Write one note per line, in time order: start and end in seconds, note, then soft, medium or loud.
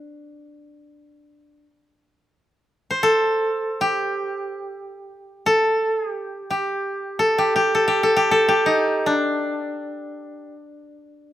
0.00 1.63 D4 medium
2.91 4.62 C5 medium
3.03 4.93 A4 medium
3.81 5.85 G4 medium
5.46 5.98 A4 medium
5.98 6.11 G#4 medium
6.11 6.50 G4 medium
6.50 7.38 G4 soft
7.19 7.74 A4 medium
7.38 7.55 G4 medium
7.56 7.87 G4 medium
7.75 8.03 A4 medium
7.88 8.16 G4 medium
8.03 8.31 A4 medium
8.16 8.48 G4 medium
8.31 10.22 A4 medium
8.48 10.52 G4 medium
8.66 9.12 D#4 medium
9.06 11.33 D4 medium